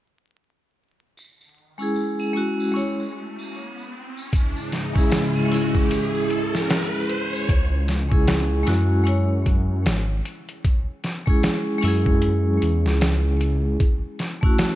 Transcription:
1.17 tambourine medium
1.17 riser medium
1.41 tambourine soft
1.78 2.30 G#3 medium
1.78 2.31 C#4 medium
1.78 2.32 E4 medium
1.78 tambourine medium
1.82 2.33 G#4 medium
1.96 tambourine medium
2.19 tambourine soft
2.19 triangle medium
2.33 2.70 G#3 medium
2.33 2.70 C#4 medium
2.33 2.71 E4 medium
2.33 2.72 F#4 medium
2.60 tambourine medium
2.72 2.96 G#3 medium
2.72 2.97 C#4 medium
2.72 2.97 E4 medium
2.76 2.98 C#5 medium
2.76 tambourine medium
3.00 tambourine soft
3.38 tambourine medium
3.38 triangle soft
3.55 tambourine soft
3.78 tambourine soft
4.17 tambourine medium
4.33 7.45 C#3 medium
4.33 7.45 G#3 medium
4.33 7.45 E4 medium
4.33 kick medium
4.33 closed hi-hat medium
4.33 tambourine medium
4.57 tambourine soft
4.72 snare soft
4.72 closed hi-hat medium
4.93 5.44 G#3 medium
4.93 5.47 C#4 medium
4.93 5.48 E4 medium
4.93 kick medium
4.93 tambourine medium
4.98 5.48 G#4 medium
5.12 snare loud
5.12 closed hi-hat medium
5.12 tambourine medium
5.36 tambourine soft
5.36 triangle medium
5.45 7.43 G#3 medium
5.45 7.45 C#4 medium
5.51 7.47 E4 medium
5.51 7.48 G#4 medium
5.51 open hi-hat medium
5.75 kick medium
5.75 tambourine medium
5.91 closed hi-hat medium
5.91 tambourine medium
6.15 tambourine soft
6.30 closed hi-hat medium
6.55 snare soft
6.55 tambourine medium
6.70 snare loud
6.70 closed hi-hat medium
6.70 tambourine medium
6.94 tambourine soft
7.09 closed hi-hat medium
7.09 triangle medium
7.33 tambourine medium
7.49 8.64 C#2 medium
7.49 kick medium
7.49 closed hi-hat medium
7.88 snare soft
7.88 closed hi-hat medium
8.09 8.62 G#3 medium
8.09 8.62 C#4 medium
8.09 8.63 E4 medium
8.09 kick medium
8.13 8.64 G#4 medium
8.28 snare loud
8.28 closed hi-hat medium
8.63 9.01 G#3 medium
8.63 9.02 C#4 medium
8.63 9.02 E4 medium
8.63 closed hi-hat medium
8.67 9.88 F#2 loud
8.67 9.03 F#4 medium
8.67 snare soft
9.04 9.28 G#3 medium
9.04 9.28 C#4 medium
9.04 9.29 E4 medium
9.04 closed hi-hat medium
9.08 9.30 C#5 medium
9.46 kick medium
9.46 closed hi-hat medium
9.86 10.21 G#1 medium
9.86 snare loud
9.86 closed hi-hat medium
10.25 closed hi-hat medium
10.49 closed hi-hat soft
10.64 kick medium
10.64 closed hi-hat medium
11.04 snare soft
11.04 closed hi-hat medium
11.25 11.77 G#3 medium
11.25 11.79 C#4 medium
11.25 11.79 E4 medium
11.25 kick medium
11.30 11.80 G#4 medium
11.43 snare loud
11.43 closed hi-hat medium
11.78 13.76 G#3 medium
11.78 13.77 C#4 medium
11.83 12.59 F#2 loud
11.83 13.79 E4 medium
11.83 open hi-hat medium
11.88 13.81 G#4 medium
12.06 kick medium
12.22 closed hi-hat medium
12.62 12.87 E2 medium
12.62 closed hi-hat medium
12.86 13.77 C#2 medium
12.86 snare soft
13.01 snare loud
13.01 closed hi-hat medium
13.41 closed hi-hat medium
13.80 kick medium
13.80 closed hi-hat medium
14.19 snare soft
14.19 closed hi-hat medium
14.41 14.75 A3 medium
14.41 14.75 C#4 medium
14.41 14.75 E4 medium
14.41 kick loud
14.46 14.75 F#4 medium
14.58 snare loud
14.58 closed hi-hat medium

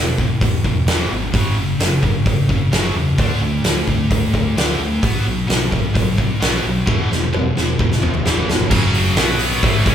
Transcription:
0.00 0.13 E1 medium
0.00 0.16 E2 medium
0.00 0.16 B2 medium
0.18 0.36 E1 medium
0.18 0.40 E2 medium
0.18 0.40 B2 medium
0.18 kick medium
0.41 0.59 E1 medium
0.41 0.63 E2 medium
0.41 0.63 B2 medium
0.41 kick loud
0.41 open hi-hat medium
0.64 0.82 E1 medium
0.64 0.85 E2 medium
0.64 0.86 B2 medium
0.64 kick medium
0.87 1.05 E1 medium
0.87 1.10 E2 medium
0.87 1.10 B2 medium
0.87 1.10 E3 medium
0.87 snare loud
0.87 open hi-hat medium
1.11 1.29 G#1 medium
1.11 1.32 E2 medium
1.11 1.32 B2 medium
1.33 1.52 F#1 medium
1.33 1.56 F#2 medium
1.33 1.56 C#3 medium
1.33 1.57 F#3 medium
1.33 kick loud
1.33 open hi-hat medium
1.56 1.74 F#1 medium
1.56 1.78 F#2 medium
1.56 1.78 C#3 medium
1.79 1.97 F#1 medium
1.79 2.01 F#2 medium
1.79 2.01 C#3 medium
1.79 snare loud
1.79 open hi-hat medium
2.03 2.21 F#1 medium
2.03 2.24 F#2 medium
2.03 2.25 C#3 medium
2.03 kick medium
2.26 2.44 F#1 medium
2.26 2.47 F#2 medium
2.26 2.48 C#3 medium
2.26 kick loud
2.26 open hi-hat soft
2.49 2.67 F#1 medium
2.49 2.70 F#2 medium
2.49 2.71 C#3 medium
2.49 kick medium
2.72 2.90 F#1 medium
2.72 2.94 F#2 medium
2.72 2.94 C#3 medium
2.72 2.95 F#3 medium
2.72 snare loud
2.72 open hi-hat medium
2.94 3.13 E2 medium
2.94 3.16 F#2 medium
2.94 3.17 C#3 medium
3.18 3.36 D2 medium
3.18 3.40 D3 medium
3.18 3.41 A3 medium
3.18 3.41 D4 loud
3.18 kick loud
3.18 open hi-hat medium
3.41 3.59 D2 medium
3.41 3.63 D3 medium
3.41 3.63 A3 medium
3.64 3.82 D2 medium
3.64 3.86 D3 medium
3.64 3.86 A3 medium
3.64 snare loud
3.64 open hi-hat medium
3.87 4.05 D2 medium
3.87 4.09 D3 medium
3.87 4.09 A3 medium
3.87 kick medium
4.10 4.28 D2 medium
4.10 4.32 D3 medium
4.10 4.32 A3 medium
4.10 kick loud
4.10 open hi-hat medium
4.34 4.52 D2 medium
4.34 4.55 D3 medium
4.34 4.55 A3 medium
4.34 kick medium
4.56 4.74 D2 medium
4.56 4.79 D3 medium
4.56 4.79 A3 medium
4.56 4.79 D4 loud
4.56 snare loud
4.56 open hi-hat medium
4.79 4.97 D2 medium
4.79 5.01 D3 medium
4.79 5.01 A3 medium
5.03 5.21 B1 medium
5.03 5.24 B2 medium
5.03 5.25 F#3 medium
5.03 5.25 B3 loud
5.03 kick loud
5.03 open hi-hat medium
5.25 5.44 B1 medium
5.25 5.47 B2 medium
5.25 5.47 F#3 medium
5.48 5.67 B1 medium
5.48 5.70 B2 medium
5.48 5.70 F#3 medium
5.48 snare loud
5.48 open hi-hat medium
5.72 5.90 B1 medium
5.72 5.93 B2 medium
5.72 5.93 F#3 medium
5.72 kick medium
5.95 6.13 B1 medium
5.95 6.16 B2 medium
5.95 6.16 F#3 medium
5.95 kick loud
5.95 open hi-hat medium
6.18 6.36 B1 medium
6.18 6.39 B2 medium
6.18 6.39 F#3 medium
6.18 kick medium
6.41 6.59 B1 medium
6.41 6.62 B2 medium
6.41 6.63 F#3 medium
6.41 6.63 B3 medium
6.41 snare loud
6.41 open hi-hat medium
6.63 6.82 B1 medium
6.63 6.85 B2 medium
6.63 6.85 F#3 medium
6.87 7.05 E1 medium
6.87 7.09 E2 medium
6.87 7.09 B2 medium
6.87 7.09 E3 loud
6.87 kick loud
7.11 7.28 E1 medium
7.11 7.32 E2 medium
7.11 7.32 B2 medium
7.11 snare medium
7.33 7.52 E1 medium
7.33 7.54 E2 medium
7.33 7.54 B2 medium
7.33 mid tom medium
7.56 7.74 E1 medium
7.56 7.78 E2 medium
7.56 7.78 B2 medium
7.56 snare medium
7.79 7.97 E1 medium
7.79 8.01 E2 medium
7.79 8.01 B2 medium
7.79 kick loud
7.92 snare medium
8.01 8.20 E1 medium
8.01 8.23 E2 medium
8.01 8.24 B2 medium
8.01 mid tom medium
8.14 mid tom medium
8.25 8.43 E1 medium
8.25 8.47 E2 medium
8.25 8.48 B2 medium
8.25 8.48 E3 medium
8.25 snare medium
8.37 floor tom medium
8.48 8.66 E1 medium
8.48 8.69 E2 medium
8.48 8.69 B2 medium
8.48 snare loud
8.60 floor tom medium
8.70 9.14 F#1 medium
8.70 9.17 F#2 medium
8.70 9.17 C#3 loud
8.70 9.17 F#3 medium
8.70 9.17 F#3 loud
8.70 9.17 C#4 medium
8.70 9.16 G#4 medium
8.70 kick loud
8.70 crash loud
8.94 open hi-hat medium
9.16 9.60 B1 medium
9.16 9.63 B2 medium
9.16 9.63 F#3 medium
9.16 9.64 B3 medium
9.16 9.64 B3 loud
9.16 9.64 F#4 medium
9.16 9.64 C#5 medium
9.16 snare loud
9.16 open hi-hat medium
9.39 open hi-hat medium
9.63 9.85 A1 medium
9.63 9.86 A2 loud
9.63 9.87 E3 medium
9.63 9.95 F#3 medium
9.63 9.87 A3 loud
9.63 9.95 C#4 medium
9.63 9.95 G#4 medium
9.63 kick loud
9.63 open hi-hat medium
9.86 9.95 C#2 loud
9.86 9.95 C#3 medium
9.86 9.95 G#3 medium
9.86 9.95 C#4 loud
9.86 kick loud
9.86 open hi-hat medium

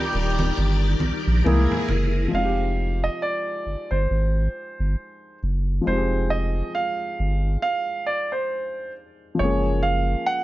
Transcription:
0.00 1.43 D#3 medium
0.00 1.41 F3 medium
0.00 0.97 G3 medium
0.00 1.41 G3 medium
0.00 1.41 D4 medium
0.00 0.97 D#4 medium
0.00 0.97 G4 medium
0.00 1.43 G4 medium
0.00 2.29 A#4 medium
0.00 0.96 D5 loud
0.00 1.42 D5 medium
0.13 0.52 D#1 medium
0.13 muted conga soft
0.39 high conga medium
0.57 0.95 G1 loud
0.57 muted conga soft
1.00 1.12 A#1 soft
1.00 high conga medium
1.27 1.43 A#1 medium
1.44 1.67 C2 loud
1.44 2.32 C3 medium
1.44 2.06 E3 medium
1.44 2.06 G#3 medium
1.44 1.88 A#3 medium
1.44 2.06 A#3 medium
1.44 2.32 E4 medium
1.44 1.88 E4 medium
1.44 2.32 G#4 medium
1.44 1.88 G#4 medium
1.44 muted conga soft
1.44 high conga medium
1.72 low conga medium
1.88 2.27 F#1 loud
1.88 muted conga soft
1.88 low conga medium
2.28 5.79 F3 medium
2.28 5.81 G#3 soft
2.33 3.09 F1 medium
2.33 5.82 C4 soft
2.33 5.83 D#4 soft
2.33 3.05 F5 medium
2.37 2.43 F4 soft
2.44 5.88 G4 medium
3.04 3.21 D#5 medium
3.22 3.93 D5 medium
3.66 3.76 G1 soft
3.91 4.07 G1 medium
3.91 5.38 C5 medium
4.10 4.48 G#1 loud
4.80 4.95 G1 medium
5.43 5.80 F#1 medium
5.81 9.33 F3 medium
5.81 9.34 G#3 soft
5.86 6.63 F1 loud
5.86 9.35 C4 medium
5.86 9.36 D#4 soft
5.86 6.32 C5 medium
5.91 5.96 G4 soft
5.97 9.41 G#4 medium
6.30 6.71 D#5 medium
6.75 7.61 F5 medium
7.19 7.57 G1 medium
7.62 8.03 F5 medium
8.06 8.30 D5 medium
8.32 8.91 C5 medium
9.35 10.44 F3 medium
9.35 9.38 G#3 soft
9.39 10.15 F#1 medium
9.39 10.44 G#3 medium
9.39 10.44 C#4 medium
9.39 9.80 C#5 medium
9.44 10.44 A#3 medium
9.44 10.44 G#4 medium
9.83 10.28 F5 medium
10.26 10.44 F#5 medium

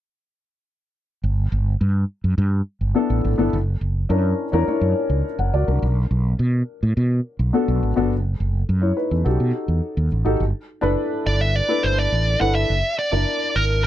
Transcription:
1.24 1.46 G1 medium
1.52 1.75 G1 medium
1.81 2.03 G2 loud
2.24 2.35 F#2 medium
2.38 2.60 G2 loud
2.81 2.92 G1 medium
2.94 3.29 B3 medium
2.94 3.30 D4 medium
2.94 3.30 E4 medium
2.94 3.30 A4 medium
3.10 3.21 A1 medium
3.25 3.36 G#1 medium
3.38 3.50 G1 medium
3.38 3.52 B3 medium
3.38 3.53 D4 medium
3.38 3.53 E4 medium
3.38 3.53 A4 medium
3.53 3.75 F#1 loud
3.81 4.04 F#1 medium
4.09 4.32 F#2 loud
4.09 4.44 C#4 medium
4.09 4.44 D4 medium
4.09 4.44 E4 medium
4.09 4.45 A#4 medium
4.52 4.64 E2 medium
4.52 4.64 C#4 medium
4.52 4.65 D4 medium
4.52 4.65 E4 medium
4.52 4.65 A#4 loud
4.67 5.24 C#4 medium
4.67 5.25 D4 medium
4.67 5.25 E4 medium
4.67 5.25 C#5 medium
4.67 muted fretless electric bass stroke soft
4.81 4.93 F#2 medium
5.10 5.21 C#2 medium
5.39 5.50 F#1 medium
5.39 5.53 A#4 medium
5.39 5.53 F#5 medium
5.54 5.65 C#2 medium
5.54 5.67 F#4 medium
5.54 5.67 D5 medium
5.67 5.79 C2 medium
5.67 5.95 D4 medium
5.67 5.95 A#4 medium
5.82 6.05 B1 loud
6.11 6.33 B1 medium
6.39 6.62 B2 loud
6.83 6.94 A2 medium
6.97 7.19 B2 medium
7.39 7.51 B1 medium
7.53 7.88 B3 medium
7.53 7.88 D4 medium
7.53 7.88 F#4 medium
7.53 7.89 A4 medium
7.68 7.79 B1 medium
7.83 7.94 G#1 medium
7.96 8.11 G1 medium
7.96 8.11 B3 medium
7.96 8.11 D4 medium
7.96 8.11 F#4 medium
7.96 8.11 A4 medium
8.11 8.34 F#1 medium
8.40 8.62 F#1 medium
8.69 8.91 F#2 medium
8.82 8.96 E4 medium
8.82 8.96 C#5 medium
8.97 9.11 D#4 medium
8.97 9.10 B4 medium
9.11 9.23 E2 medium
9.11 9.39 C#4 soft
9.11 9.24 A4 medium
9.24 9.37 B1 medium
9.24 10.05 D#4 medium
9.24 10.05 F#4 medium
9.24 10.06 G4 medium
9.24 10.06 A4 medium
9.40 9.51 B2 medium
9.68 9.80 E2 medium
9.97 10.08 D#2 medium
10.12 10.23 A1 medium
10.25 10.37 G#1 medium
10.25 10.40 D#4 medium
10.25 10.40 F#4 medium
10.25 10.40 G4 medium
10.25 10.40 A4 medium
10.40 10.51 G1 medium
10.81 10.94 F#1 medium
10.81 11.51 D4 loud
10.81 11.51 E4 medium
10.81 11.52 A4 medium
10.81 11.52 B4 medium
11.26 11.60 G1 medium
11.26 11.40 D5 medium
11.41 11.56 E5 medium
11.56 11.85 D5 medium
11.68 12.26 D4 medium
11.68 12.26 E4 medium
11.68 12.27 A4 medium
11.68 12.27 B4 medium
11.83 12.06 G1 medium
11.83 11.98 C5 medium
11.99 12.41 D5 medium
12.12 12.35 A1 medium
12.39 12.63 G1 medium
12.39 12.69 D4 medium
12.39 12.69 E4 medium
12.39 12.69 A4 medium
12.39 12.70 B4 medium
12.39 12.54 F#5 medium
12.55 12.95 E5 medium
12.70 12.81 F#1 medium
12.98 13.57 D5 medium
13.11 13.24 F#1 medium
13.11 13.81 D4 medium
13.11 13.81 E4 medium
13.11 13.81 A#4 medium
13.11 13.81 D5 medium
13.56 13.87 G#1 medium
13.56 13.83 A#4 medium

